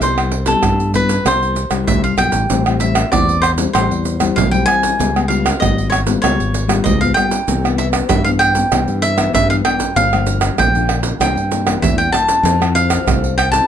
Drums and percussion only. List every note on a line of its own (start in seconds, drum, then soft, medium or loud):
0.01 pandeiro medium
0.01 shaker medium
0.01 surdo medium
0.18 pandeiro soft
0.18 tamborim medium
0.18 shaker soft
0.31 pandeiro medium
0.46 pandeiro medium
0.46 shaker medium
0.63 pandeiro medium
0.63 tamborim medium
0.63 shaker medium
0.63 surdo medium
0.80 pandeiro soft
0.80 shaker soft
0.94 pandeiro medium
0.94 shaker medium
0.94 surdo medium
1.09 pandeiro medium
1.09 shaker medium
1.26 pandeiro medium
1.26 tamborim medium
1.26 shaker medium
1.26 surdo medium
1.43 pandeiro soft
1.43 shaker soft
1.56 pandeiro medium
1.56 shaker medium
1.71 pandeiro medium
1.71 tamborim medium
1.71 shaker medium
1.88 pandeiro medium
1.88 shaker medium
1.88 surdo loud
2.04 pandeiro soft
2.04 shaker soft
2.18 pandeiro medium
2.18 tamborim medium
2.18 shaker medium
2.32 pandeiro medium
2.32 shaker medium
2.50 pandeiro medium
2.50 shaker medium
2.50 surdo medium
2.66 pandeiro soft
2.66 tamborim medium
2.66 shaker soft
2.80 pandeiro medium
2.80 shaker medium
2.95 pandeiro medium
2.95 tamborim medium
2.95 shaker medium
2.95 surdo soft
3.13 pandeiro medium
3.13 tamborim medium
3.13 shaker medium
3.13 surdo loud
3.29 pandeiro soft
3.29 shaker soft
3.43 pandeiro medium
3.43 tamborim medium
3.43 shaker medium
3.58 pandeiro medium
3.58 shaker medium
3.58 surdo soft
3.75 pandeiro medium
3.75 tamborim medium
3.75 shaker medium
3.75 surdo medium
3.91 pandeiro soft
3.91 shaker soft
3.91 surdo soft
4.05 pandeiro medium
4.05 shaker medium
4.20 pandeiro medium
4.20 tamborim medium
4.20 shaker medium
4.20 surdo soft
4.38 pandeiro medium
4.38 shaker medium
4.38 surdo loud
4.54 pandeiro soft
4.54 shaker soft
4.68 pandeiro medium
4.68 tamborim medium
4.83 pandeiro medium
4.83 shaker medium
4.83 surdo soft
5.00 pandeiro medium
5.00 shaker medium
5.00 surdo medium
5.16 pandeiro soft
5.16 tamborim medium
5.16 shaker soft
5.30 pandeiro medium
5.46 pandeiro medium
5.46 tamborim medium
5.46 shaker medium
5.46 surdo soft
5.62 pandeiro medium
5.62 tamborim medium
5.62 shaker medium
5.62 surdo loud
5.78 pandeiro soft
5.78 shaker soft
5.92 pandeiro medium
5.92 tamborim medium
5.92 shaker medium
6.07 pandeiro medium
6.07 shaker medium
6.07 surdo soft
6.24 pandeiro medium
6.24 tamborim medium
6.24 shaker medium
6.24 surdo medium
6.40 pandeiro soft
6.40 shaker soft
6.40 surdo soft
6.54 pandeiro medium
6.54 shaker medium
6.69 pandeiro medium
6.69 tamborim medium
6.69 shaker medium
6.69 surdo soft
6.86 pandeiro medium
6.86 shaker medium
6.86 surdo loud
7.03 pandeiro soft
7.03 shaker soft
7.17 pandeiro medium
7.17 tamborim medium
7.17 shaker medium
7.31 pandeiro medium
7.31 shaker medium
7.31 surdo soft
7.48 pandeiro medium
7.48 shaker medium
7.48 surdo medium
7.65 pandeiro soft
7.65 tamborim medium
7.65 shaker soft
7.79 pandeiro medium
7.93 pandeiro medium
7.93 tamborim medium
7.93 shaker medium
7.93 surdo soft
8.09 pandeiro medium
8.09 tamborim medium
8.09 shaker medium
8.09 surdo loud
8.26 pandeiro soft
8.26 shaker soft
8.40 pandeiro medium
8.40 tamborim medium
8.40 shaker medium
8.55 pandeiro medium
8.55 shaker medium
8.55 surdo soft
8.72 pandeiro medium
8.72 tamborim medium
8.72 shaker medium
8.72 surdo medium
8.88 pandeiro soft
8.88 shaker soft
9.03 pandeiro medium
9.03 shaker medium
9.18 pandeiro medium
9.18 tamborim medium
9.18 shaker medium
9.18 surdo soft
9.35 pandeiro medium
9.35 shaker medium
9.35 surdo loud
9.50 pandeiro soft
9.50 shaker soft
9.65 pandeiro medium
9.65 tamborim medium
9.80 pandeiro medium
9.80 shaker medium
9.80 surdo soft
9.97 pandeiro medium
9.97 shaker medium
9.97 surdo medium
10.13 pandeiro soft
10.13 tamborim medium
10.13 shaker soft
10.27 pandeiro medium
10.27 shaker medium
10.41 pandeiro medium
10.41 tamborim medium
10.41 shaker medium
10.41 surdo soft
10.58 pandeiro medium
10.58 tamborim medium
10.58 shaker medium
10.58 surdo loud
10.75 pandeiro soft
10.75 shaker soft
10.89 pandeiro medium
10.89 tamborim medium
11.03 pandeiro medium
11.03 shaker medium
11.03 surdo soft
11.21 pandeiro medium
11.21 tamborim medium
11.21 shaker medium
11.21 surdo medium
11.37 pandeiro soft
11.37 shaker soft
11.37 surdo soft
11.52 pandeiro medium
11.52 shaker medium
11.67 pandeiro medium
11.67 tamborim medium
11.67 shaker medium
11.67 surdo soft
11.84 pandeiro medium
11.84 shaker medium
11.84 surdo loud
12.00 pandeiro soft
12.00 shaker soft
12.14 pandeiro medium
12.14 tamborim medium
12.14 shaker medium
12.28 pandeiro medium
12.28 shaker medium
12.28 surdo soft
12.45 pandeiro medium
12.45 shaker medium
12.45 surdo medium
12.62 pandeiro soft
12.62 tamborim medium
12.62 shaker soft
12.75 pandeiro medium
12.75 shaker medium
12.90 pandeiro medium
12.90 tamborim medium
12.90 shaker medium
12.90 surdo soft
13.08 pandeiro medium
13.08 tamborim medium
13.08 shaker medium
13.08 surdo loud
13.24 pandeiro soft
13.24 shaker soft
13.39 pandeiro medium
13.39 tamborim medium
13.39 shaker medium
13.53 pandeiro medium
13.53 shaker medium
13.53 surdo soft